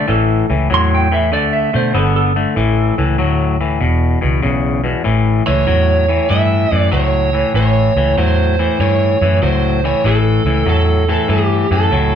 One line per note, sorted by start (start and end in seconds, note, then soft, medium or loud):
0.08 0.42 A1 medium
0.08 0.45 A2 medium
0.08 0.45 E3 medium
0.08 0.49 A4 loud
0.50 0.66 C#2 loud
0.50 0.68 A2 medium
0.50 0.68 E3 medium
0.70 1.33 E2 medium
0.70 1.07 A2 medium
0.70 1.08 F#3 loud
0.74 0.92 C6 loud
0.95 1.13 G5 loud
1.11 1.30 A2 medium
1.11 1.30 E3 medium
1.11 1.33 E5 medium
1.32 1.66 D2 loud
1.32 1.70 D3 medium
1.32 1.70 A3 medium
1.32 1.53 D5 loud
1.53 1.73 E5 loud
1.73 1.91 B2 medium
1.73 1.92 D3 medium
1.73 1.92 A3 medium
1.73 1.95 C5 medium
1.94 2.45 G1 medium
1.94 2.32 D3 medium
1.94 2.32 B3 loud
1.94 2.15 A4 medium
2.16 3.36 A4 loud
2.36 2.55 D3 medium
2.36 2.55 A3 medium
2.56 2.90 A1 medium
2.56 2.94 A2 medium
2.56 2.94 E3 loud
2.98 3.15 C#2 loud
2.98 3.17 A2 medium
2.98 3.17 E3 medium
3.18 3.83 D2 medium
3.18 3.56 A2 medium
3.18 3.56 F#3 medium
3.61 3.79 A2 medium
3.61 3.79 E3 medium
3.80 4.15 E1 loud
3.80 4.18 E2 medium
3.80 4.18 B2 loud
4.21 4.40 C#2 loud
4.21 4.41 E2 medium
4.21 4.41 B2 medium
4.42 4.95 B1 medium
4.42 4.80 E2 medium
4.42 4.81 C#3 medium
4.84 5.03 E2 medium
4.84 5.03 B2 medium
5.04 5.40 A1 medium
5.04 5.42 A2 medium
5.04 5.43 E3 loud
5.46 5.65 C#2 medium
5.46 5.65 A2 medium
5.46 5.65 E3 medium
5.46 6.33 C#5 loud
5.67 6.19 E2 medium
5.67 6.05 A2 medium
5.67 6.05 F#3 loud
6.09 6.28 A2 medium
6.09 6.28 E3 medium
6.30 6.64 G2 medium
6.30 6.67 A2 medium
6.30 6.68 E3 medium
6.30 6.75 E5 loud
6.72 6.89 F#2 medium
6.72 6.90 A2 medium
6.72 6.91 E3 medium
6.72 6.88 D5 loud
6.91 7.43 C#2 medium
6.91 7.29 A2 medium
6.91 7.30 F#3 medium
6.91 7.51 C#5 loud
7.33 7.52 A2 medium
7.33 7.53 E3 medium
7.54 7.88 A1 medium
7.54 7.92 A2 medium
7.54 7.93 E3 medium
7.54 8.17 C#5 loud
7.96 8.13 C#2 medium
7.96 8.15 A2 medium
7.96 8.15 E3 medium
8.17 8.68 E2 medium
8.17 8.55 A2 medium
8.17 8.55 F#3 loud
8.17 8.80 C5 medium
8.59 8.78 A2 medium
8.59 8.78 E3 medium
8.79 9.13 G2 medium
8.79 9.17 A2 medium
8.79 9.17 E3 medium
8.79 9.38 C#5 medium
9.21 9.38 F#2 medium
9.21 9.40 A2 medium
9.21 9.40 E3 medium
9.42 9.93 C#2 medium
9.42 9.80 A2 medium
9.42 9.80 F#3 medium
9.42 9.81 C5 loud
9.84 10.02 A2 medium
9.84 10.03 E3 medium
9.84 10.06 C#5 medium
10.04 10.38 A1 medium
10.04 10.42 A2 medium
10.04 10.42 E3 medium
10.04 10.68 A4 medium
10.45 10.62 C#2 medium
10.45 10.64 A2 medium
10.45 10.65 E3 medium
10.66 11.17 E2 medium
10.66 11.04 A2 medium
10.66 11.04 F#3 medium
10.66 11.09 A4 medium
11.09 11.27 A2 medium
11.09 11.27 E3 medium
11.09 11.30 A4 medium
11.28 11.63 G2 medium
11.28 11.66 A2 medium
11.28 11.66 E3 loud
11.28 11.72 G4 medium
11.71 11.87 F#2 loud
11.71 11.89 A2 medium
11.71 11.89 E3 medium
11.71 12.15 A4 medium
11.91 12.15 C#2 medium
11.91 12.15 A2 medium
11.91 12.15 F#3 medium